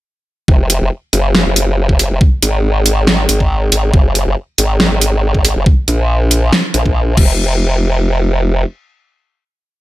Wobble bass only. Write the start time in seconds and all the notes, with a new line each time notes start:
0.48 F1
0.81 F1
1.13 F#1
1.46 F#1
2.11 F1
2.42 G#1
3.29 G#1
3.72 G#1
3.94 F#1
4.27 F#1
4.58 G#1
4.91 G#1
5.56 F#1
5.88 A#1
6.74 A#1
6.86 A#1
7.17 F1